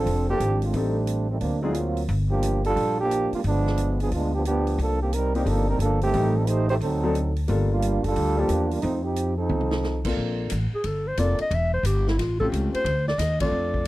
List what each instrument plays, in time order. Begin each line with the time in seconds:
Already playing: trombone section F3 C4 D4 A4
0.06 upright bass F1, open hi-hat
0.29 trombone section F3 C4 D4 G4, grand piano A#3 C4 D4 F4 A4
0.40 upright bass G#1, closed hi-hat
0.62 trombone section A3 C4 D4 F4, open hi-hat
0.73 upright bass A1, trombone section G3 A3 C4 D4, grand piano A3 C4 D#4 G4 A4, open hi-hat
1.07 closed hi-hat
1.31 trombone section D#3 G3 A3 C4
1.41 upright bass D2, trombone section F#3 A#3 C4 D4, open hi-hat
1.62 trombone section F3 G#3 C4 D#4, grand piano F#3 C4 D4 F4 G#4
1.74 trombone section F#3 A#3 C4 F4, closed hi-hat
1.97 open hi-hat
2.08 upright bass G1, open hi-hat
2.30 trombone section F3 A#3 D4 G4
2.43 closed hi-hat
2.64 trombone section G3 D4 F4 A4, open hi-hat
2.76 upright bass A#1, open hi-hat
3.01 trombone section F3 A#3 D4 G4
3.11 closed hi-hat
3.32 trombone section G3 A#3 D4 F4, muted upright bass stroke, open hi-hat
3.44 upright bass G1, trombone section F3 G#3 B3 D4, open hi-hat
3.67 snare
3.78 closed hi-hat
4.00 trombone section F3 B3 D4 G#4, open hi-hat
4.12 upright bass D2, trombone section G#3 B3 D4 F4, open hi-hat
4.35 trombone section F3 B3 D4 G4
4.45 trombone section F3 B3 D4 G4, closed hi-hat
4.67 open hi-hat
4.78 upright bass C2, trombone section F3 A#3 D4, open hi-hat
4.83 trombone section A4
5.02 trombone section D#3 A#3 C4 G4
5.13 trombone section G3 C4 D#4 A#4, closed hi-hat
5.35 trombone section D#3 A#3 C4 G4, grand piano A#3 C4 D4 D#4 G4, open hi-hat
5.46 upright bass G1, trombone section F3 A#3 D4 A4, open hi-hat
5.69 trombone section G3 C4 D#4 A#4
5.79 upright bass G1, trombone section F3 A#3 D4 A4, closed hi-hat
6.01 trombone section D#3 A3 C4 G4, open hi-hat
6.13 upright bass A1, grand piano G3 A3 C4 D#4 G4, open hi-hat
6.37 trombone section G3 C4 D#4 A4
6.47 trombone section A3 D#4 G4 C5, closed hi-hat
6.69 trombone section A3 D#4 G4 C5, open hi-hat
6.81 upright bass D2, trombone section F#3 C4 D#4 A4, open hi-hat
7.03 grand piano F#3 C4 D4 D#4 A4
7.15 closed hi-hat
7.36 open hi-hat
7.48 upright bass G1, grand piano G3 A#3 D4 F4 A4, open hi-hat
7.72 trombone section G3 A#3 D4 F4
7.82 closed hi-hat
8.04 upright bass F#1, trombone section G3 D4 F4 A4, open hi-hat
8.16 upright bass D2, open hi-hat
8.36 trombone section F3 A#3 D4 G4, grand piano G3 A#3 D4 F4 A4
8.49 upright bass E2, closed hi-hat
8.71 trombone section G3 A#3 D4 F4, open hi-hat
8.82 upright bass F2, trombone section F3 A3 C4 D#4, open hi-hat
9.03 trombone section F3 C4 D#4 G4
9.16 closed hi-hat
9.38 trombone section F3 C4 D#4 A4
9.49 upright bass C2, high tom
9.61 mid tom
9.71 snare
9.83 snare
10.05 grand piano A#3 C4 D4 F4 A4, kick, crash
10.17 upright bass A#1
10.50 upright bass A1, hi-hat pedal, ride
10.73 clarinet G#4, muted upright bass stroke
10.84 upright bass G1, clarinet A4, ride
11.07 clarinet C5
11.17 upright bass F1, grand piano A#3 C4 D4 F4 A4, clarinet D5, hi-hat pedal, ride
11.39 clarinet D#5, muted upright bass stroke, ride
11.51 upright bass E1, clarinet E5, ride
11.73 clarinet C5
11.83 upright bass G1, clarinet G4, hi-hat pedal, ride
12.07 clarinet E4, snare
12.18 upright bass A1, clarinet F4, snare, ride
12.40 grand piano A3 C4 C#4 F4 G4, clarinet A4, kick
12.52 upright bass C#2, hi-hat pedal, ride
12.74 clarinet C5, muted upright bass stroke, ride
12.84 upright bass D2, ride
13.08 clarinet D5, snare
13.18 upright bass D#2, clarinet D#5, snare, hi-hat pedal, ride
13.40 grand piano A3 C4 D4 F4 A4, clarinet D5, kick, ride
13.51 upright bass F2
13.74 kick